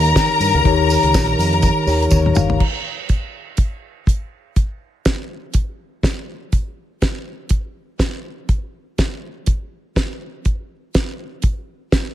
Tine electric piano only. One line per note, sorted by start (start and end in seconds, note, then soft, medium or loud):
0.00 0.60 D#3 medium
0.00 0.61 D#4 medium
0.00 0.62 G4 medium
0.00 0.62 C#5 loud
0.64 1.84 D#3 medium
0.64 1.85 D#4 medium
0.64 1.85 G4 medium
0.64 1.86 C#5 medium
1.86 2.60 D#3 medium
1.86 2.60 D#4 medium
1.86 2.61 G4 medium
1.86 2.10 C#5 medium
2.11 2.34 C#5 medium
2.35 2.58 F5 medium